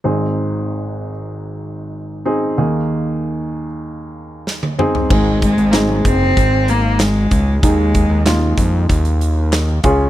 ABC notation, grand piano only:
X:1
M:4/4
L:1/8
Q:1/4=95
K:Ab
V:1 name="Grand piano"
[CEA]3 z4 [CEA] | [B,EA]3 z4 [CEA] | [CEA]2 [CEA]3 z3 | [B,EA]2 [B,EF]3 z2 [DFA] |]
V:2 name="Grand piano" clef=bass
[A,,,A,,]8 | [E,,E,]6- [E,,E,] z | A,,3 z4 z | E,3 z4 D, |]